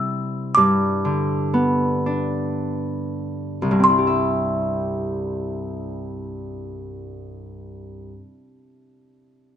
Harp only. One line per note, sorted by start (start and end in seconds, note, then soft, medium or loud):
0.00 0.62 C3 medium
0.00 0.62 G3 medium
0.00 1.60 C4 medium
0.00 1.86 E4 soft
0.57 3.70 G2 medium
1.05 3.90 D3 soft
1.54 3.86 B3 medium
2.06 4.86 D4 soft
3.62 8.10 C2 soft
3.71 8.19 G2 soft
3.80 8.28 C4 soft
3.89 8.38 E4 soft
3.98 8.47 G4 soft
4.07 8.55 E5 soft